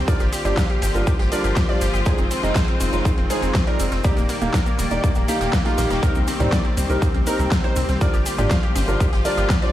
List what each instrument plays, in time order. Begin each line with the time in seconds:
Already playing: string section G3
0.07 string section D3 F3 A#3 F4, felt piano G3 D4 F4 A#4, synth pluck D5, kick, closed hi-hat, ride, cabasa
0.20 sub bass G1, synth pluck G4, snare, closed hi-hat, cabasa
0.33 synth pluck G4, closed hi-hat, open hi-hat, ride, cabasa
0.45 sub bass G1, felt piano G3 D4 F4 D5, synth pluck G4, closed hi-hat, cabasa
0.57 synth pluck F5, kick, snare, closed hi-hat, ride, cabasa
0.70 synth pluck G4, closed hi-hat
0.82 sub bass G1, synth pluck G4, snare, closed hi-hat, open hi-hat, ride, cabasa
0.95 sub bass G1, felt piano G3 D4 F4 A#4, closed hi-hat, cabasa
1.07 synth pluck G4, kick, closed hi-hat, ride, cabasa
1.19 sub bass G1, synth pluck G4, snare, closed hi-hat
1.32 felt piano G3 D4 F4 A#4, synth pluck D5, open hi-hat, ride, cabasa
1.44 sub bass G1, synth pluck G4, closed hi-hat, cabasa
1.56 synth pluck G4, kick, snare, closed hi-hat, ride, cabasa
1.69 felt piano G3 D4 F4 C5, synth pluck D5, snare, closed hi-hat
1.81 sub bass G1, synth pluck G4, snare, closed hi-hat, open hi-hat, ride, cabasa
1.94 sub bass G1, synth pluck G4, snare, closed hi-hat, cabasa
2.06 string section D#3 G#3 C4, felt piano G#3 D#4 F4 C5, synth pluck G#4, kick, closed hi-hat, ride, cabasa
2.18 sub bass F1, synth pluck C4, closed hi-hat, cabasa
2.31 synth pluck C4, closed hi-hat, open hi-hat, ride, cabasa
2.43 sub bass F1, felt piano G#3 D#4 F4 D#5, synth pluck C4, closed hi-hat, cabasa
2.55 synth pluck C5, kick, snare, closed hi-hat, ride, cabasa
2.68 synth pluck C4, closed hi-hat
2.80 sub bass F1, synth pluck C4, closed hi-hat, open hi-hat, ride, cabasa
2.93 sub bass F1, felt piano G#3 D#4 F4 C5, closed hi-hat, cabasa
3.05 synth pluck C4, kick, closed hi-hat, ride, cabasa
3.18 sub bass F1, synth pluck C4, closed hi-hat
3.30 felt piano G#3 D#4 F4 C5, synth pluck G#4, closed hi-hat, open hi-hat, ride, cabasa
3.42 sub bass F1, synth pluck C4, closed hi-hat, cabasa
3.55 synth pluck C4, kick, snare, closed hi-hat, ride, cabasa
3.67 felt piano G#3 D#4 F4 D5, synth pluck A#4, closed hi-hat
3.80 sub bass F1, synth pluck C4, closed hi-hat, open hi-hat, ride, cabasa
3.92 sub bass F1, synth pluck C4, snare, closed hi-hat, cabasa
4.04 string section D#3 G3 A#3 G4 D5, felt piano A#3 D#4 G4 D5, synth pluck G4, kick, closed hi-hat, ride, cabasa
4.17 sub bass D#1, synth pluck A#3, snare, closed hi-hat, cabasa
4.29 synth pluck A#3, open hi-hat, ride, cabasa
4.41 sub bass D#1, synth pluck A#3, felt piano A#3 D#4 G4 F5, closed hi-hat, cabasa
4.53 synth pluck A#4, kick, snare, closed hi-hat, ride, cabasa
4.66 synth pluck A#3, closed hi-hat, cabasa
4.79 sub bass D#1, synth pluck A#3, snare, closed hi-hat, open hi-hat, ride, cabasa
4.90 sub bass D#1, felt piano A#3 D#4 G4 D5, closed hi-hat, cabasa
5.04 synth pluck A#3, kick, closed hi-hat, ride, cabasa
5.15 sub bass D#1, synth pluck A#3, closed hi-hat, cabasa
5.28 felt piano A#3 D#4 G4 F5, synth pluck G4, snare, closed hi-hat, open hi-hat, ride, cabasa
5.41 sub bass D#1, synth pluck A#3, snare, closed hi-hat, cabasa
5.53 synth pluck A#3, kick, snare, closed hi-hat, ride, cabasa
5.65 felt piano A#3 D#4 G4 F5, synth pluck F4, snare, closed hi-hat
5.78 sub bass A#1, synth pluck A#3, snare, closed hi-hat, open hi-hat, ride, cabasa
5.90 sub bass D#1, synth pluck A#3, snare, closed hi-hat, cabasa
6.03 felt piano G3 C4 D#4 A#4, string section C4, synth pluck A#4, kick, closed hi-hat, ride, cabasa
6.15 sub bass C2, synth pluck C4, closed hi-hat, cabasa
6.28 synth pluck C4, closed hi-hat, open hi-hat, ride, cabasa
6.40 sub bass C2, felt piano G3 C4 D#4 D5, synth pluck C4, closed hi-hat, mid tom, cabasa
6.52 synth pluck D5, kick, snare, closed hi-hat, ride, cabasa
6.65 synth pluck C4, closed hi-hat
6.77 sub bass C2, synth pluck C4, closed hi-hat, open hi-hat, ride, cabasa
6.90 sub bass C2, felt piano G3 C4 D#4 A#4, closed hi-hat, cabasa
7.02 synth pluck C4, kick, closed hi-hat, ride, cabasa
7.14 sub bass C2, synth pluck C4, closed hi-hat, high conga
7.26 felt piano G3 C4 D#4 A#4, synth pluck A#4, closed hi-hat, open hi-hat, ride, cabasa
7.39 sub bass C2, synth pluck C4, closed hi-hat, cabasa
7.51 synth pluck C4, kick, snare, closed hi-hat, ride, cabasa
7.64 felt piano G3 C4 D#4 C5, synth pluck C5, closed hi-hat
7.76 sub bass C2, synth pluck C4, closed hi-hat, open hi-hat, ride, cabasa
7.89 sub bass C2, synth pluck C4, snare, closed hi-hat, cabasa
8.01 string section D3 F3 F4, felt piano G3 D4 F4 A#4, synth pluck D5, kick, closed hi-hat, ride, cabasa
8.13 sub bass G1, synth pluck G4, snare, closed hi-hat, cabasa
8.26 synth pluck G4, closed hi-hat, open hi-hat, ride, cabasa
8.38 sub bass G1, felt piano G3 D4 F4 D5, synth pluck G4, closed hi-hat, mid tom, cabasa
8.50 synth pluck F5, kick, snare, closed hi-hat, ride, cabasa
8.63 synth pluck G4, closed hi-hat
8.75 sub bass G1, synth pluck G4, snare, closed hi-hat, open hi-hat, ride, high conga, cabasa
8.88 sub bass G1, felt piano G3 D4 F4 A#4, closed hi-hat, cabasa
9.00 synth pluck G4, kick, closed hi-hat, ride, cabasa
9.13 sub bass G1, synth pluck G4, snare, closed hi-hat
9.25 felt piano G3 D4 F4 A#4, synth pluck D5, open hi-hat, ride, cabasa
9.37 sub bass G1, synth pluck G4, closed hi-hat, cabasa
9.50 synth pluck G4, kick, snare, closed hi-hat, ride, cabasa
9.62 felt piano G3 D4 F4 C5, synth pluck D5, snare, closed hi-hat